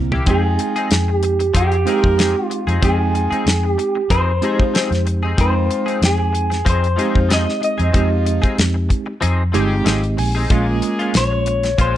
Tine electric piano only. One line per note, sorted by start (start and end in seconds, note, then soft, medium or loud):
0.00 0.18 G3 medium
0.00 0.18 A#3 medium
0.00 0.19 C4 medium
0.00 0.19 E4 loud
0.26 1.44 G#3 medium
0.26 1.44 C4 medium
0.26 1.44 D#4 medium
0.26 1.44 G5 medium
1.85 2.74 G#3 medium
1.85 2.74 C4 medium
1.85 2.74 D#4 medium
1.85 2.75 G4 medium
2.82 4.00 G#3 medium
2.82 4.00 C4 medium
2.82 4.00 D#4 medium
2.82 4.00 G5 medium
4.42 5.30 G#3 medium
4.42 5.30 C4 medium
4.42 5.31 D#4 medium
4.42 5.31 G4 medium
5.38 6.55 G#3 medium
5.38 6.56 C4 medium
5.38 6.56 D#4 medium
5.38 6.56 G5 medium
6.97 7.86 G#3 medium
6.97 7.86 C4 medium
6.97 7.86 D#4 medium
6.97 7.87 G4 medium
7.94 9.12 G#3 medium
7.94 9.12 C4 medium
7.94 9.12 D#4 medium
7.94 9.13 G4 medium
9.54 10.42 G#3 medium
9.54 10.43 C4 medium
9.54 10.43 D#4 medium
9.54 10.43 G4 medium
9.86 10.16 D#5 medium
10.19 10.48 G#5 medium
10.50 11.68 G#3 medium
10.50 11.68 A#3 medium
10.50 11.69 C#4 medium
10.50 11.69 F4 medium